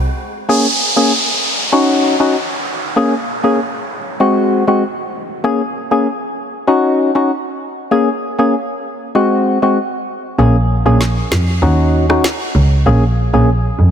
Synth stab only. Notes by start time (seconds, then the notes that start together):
0.49 A#3 C#4 G#4
0.96 A#3 C#4 G#4
1.72 C#4 D#4 F#4
2.20 C#4 D#4 F#4
2.96 A#3 C#4 G#4
3.44 A#3 C#4 G#4
4.20 G#3 C4 F#4
4.67 G#3 C4 F#4
5.44 A#3 C#4 G#4
5.91 A#3 C#4 G#4
6.67 C#4 D#4 F#4
7.15 C#4 D#4 F#4
7.91 A#3 C#4 G#4
8.39 A#3 C#4 G#4
9.15 G#3 C4 F#4
9.62 G#3 C4 F#4
10.39 A#3 C#4 G#4
10.86 A#3 C#4 G#4
11.62 C#4 D#4 F#4
12.09 C#4 D#4 F#4
12.86 A#3 C#4 G#4
13.33 A#3 C#4 G#4